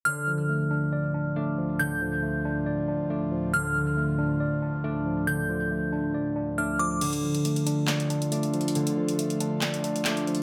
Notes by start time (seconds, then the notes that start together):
0.05 D2 A2 D3 F3 F6
0.27 F3
0.49 A3
0.71 D4
0.93 D5
1.14 D4
1.36 A3 D4
1.58 F3
1.79 D3 G6
2.01 F3
2.23 A3
2.45 D4
2.66 D5
2.88 D4
3.10 A3 D4
3.32 F3
3.53 D3 F6
3.75 F3
3.97 A3
4.19 D4
4.40 D5
4.62 D4
4.84 A3 D4
5.06 F3
5.27 D3 G6
5.49 F3
5.71 A3
5.93 D4
6.14 D5
6.36 D4
6.58 A3 D4 F6
6.79 F3 D6
7.01 D3 A3 F4, closed hi-hat, crash
7.13 closed hi-hat
7.23 F3
7.35 closed hi-hat
7.45 A3, closed hi-hat
7.56 closed hi-hat
7.66 D4, closed hi-hat
7.88 D5, snare, clap, closed hi-hat
8.00 closed hi-hat
8.10 D4, closed hi-hat
8.22 closed hi-hat
8.32 A3 D4, closed hi-hat
8.43 closed hi-hat
8.54 F3, closed hi-hat
8.61 closed hi-hat
8.68 closed hi-hat
8.75 D3, closed hi-hat
8.87 closed hi-hat
8.97 F3
9.09 closed hi-hat
9.19 A3, closed hi-hat
9.30 closed hi-hat
9.40 D4, closed hi-hat
9.61 D5, snare, clap, closed hi-hat
9.74 closed hi-hat
9.84 D4, closed hi-hat
9.96 closed hi-hat
10.05 A3 D4, snare, clap, closed hi-hat
10.17 closed hi-hat
10.27 F3, closed hi-hat
10.35 closed hi-hat